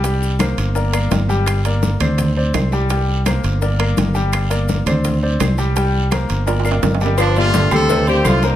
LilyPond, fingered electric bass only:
\new Staff \with { instrumentName = "Fingered electric bass" } { \clef bass \time 4/4 \key g \minor \tempo 4 = 168 c,4. g,,4. g,,4~ | g,,4. d,4. c,4~ | c,4. g,,4. g,,4~ | g,,4. d,4. c,4~ |
c,4. g,,4. g,,4~ | g,,4. d,4. c,4 | }